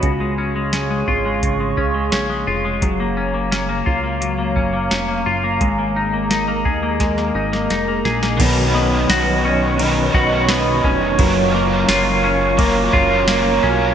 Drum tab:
CC |----------------|----------------|----------------|x---------------|
RD |----------------|----------------|----------------|x---x---x---x---|
HH |x---x---x---x---|x---x---x---x---|x---x---x---x---|----------------|
TB |----------------|----------------|----------------|----x-------x---|
SD |----o-------o---|----o-------o---|----o---oo-oo-oo|----o-------o---|
BD |o-----o-o-o-----|o-----o---o-----|o-----o-o-------|o---------o---o-|

CC |----------------|
RD |x---x---x---x---|
HH |----------------|
TB |----x-------x---|
SD |----o-------o---|
BD |o-------o-o-----|